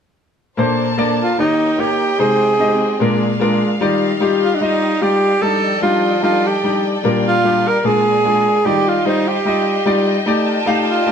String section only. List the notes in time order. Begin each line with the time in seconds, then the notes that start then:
0.58 A#4 C5 D5 A5
1.40 A#4 C#5 D#5 G5
2.20 C4 G#4 C5
3.00 A#4 D5 F5
3.81 G4 D5 D#5
5.42 F3 A4 D#5 G5
7.05 A#4 F5
7.86 A#4 G#5
8.66 D#5 F5 G5
10.27 F4 D5 A5